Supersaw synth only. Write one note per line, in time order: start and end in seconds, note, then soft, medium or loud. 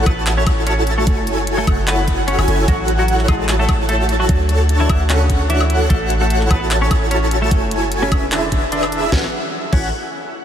0.06 1.05 E4 loud
0.06 1.05 F#4 medium
0.06 1.05 A4 medium
0.06 1.05 C#5 medium
0.06 1.05 A5 loud
1.07 1.65 E4 medium
1.07 1.65 F#4 medium
1.07 1.65 A4 medium
1.07 1.65 C#5 medium
1.07 1.65 G#5 medium
1.67 2.36 E4 medium
1.67 2.36 F#4 medium
1.67 2.36 A4 medium
1.67 2.36 C#5 medium
1.67 2.36 F#5 loud
2.38 2.45 E4 loud
2.38 2.45 F#4 medium
2.38 2.45 A4 medium
2.38 2.45 C#5 medium
2.38 2.45 G#5 loud
2.48 2.66 E4 medium
2.48 2.66 F#4 medium
2.48 2.66 A4 medium
2.48 2.66 C#5 medium
2.48 2.66 G#5 loud
3.28 4.27 E4 loud
3.28 4.27 F#4 medium
3.28 4.27 A4 medium
3.28 4.27 C#5 medium
3.28 4.27 A5 loud
4.29 4.87 D4 medium
4.29 4.87 F#4 medium
4.29 4.87 A4 medium
4.29 4.87 C#5 medium
4.29 4.87 A5 medium
4.89 5.88 D4 medium
4.89 5.88 F#4 medium
4.89 5.88 A4 medium
4.89 5.88 C#5 medium
4.89 5.88 F#5 loud
5.90 6.48 E4 medium
5.90 6.48 F#4 medium
5.90 6.48 A4 medium
5.90 6.48 C#5 medium
5.90 6.48 F#5 loud
6.50 7.49 A4 medium
6.50 7.49 A5 loud
7.51 8.09 F#4 medium
7.51 8.09 C#5 medium
8.12 9.10 D4 medium
8.12 9.10 E4 medium
8.12 9.10 B4 medium
9.12 9.24 E4 medium
9.12 9.24 F#4 medium
9.12 9.24 A4 medium
9.12 9.24 C#5 medium
9.73 9.88 E4 medium
9.73 9.88 F#4 medium
9.73 9.88 A4 medium
9.73 9.88 C#5 medium
9.73 9.88 F#5 loud